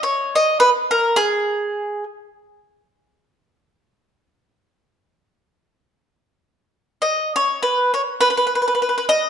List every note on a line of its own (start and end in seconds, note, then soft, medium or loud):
0.03 0.34 C#5 medium
0.35 0.59 D#5 medium
0.60 0.69 B4 medium
0.91 1.17 A#4 medium
1.16 2.03 G#4 loud
7.02 7.32 D#5 medium
7.36 7.60 C#5 medium
7.63 7.92 B4 medium
7.94 8.01 C#5 medium
8.21 8.28 B4 medium
8.37 8.45 B4 medium
8.47 8.53 B4 medium
8.55 8.60 B4 medium
8.62 8.66 B4 soft
8.68 8.73 B4 medium
8.75 8.80 B4 soft
8.82 8.88 B4 medium
8.89 8.96 B4 soft
8.98 9.05 B4 medium
9.09 9.29 D#5 medium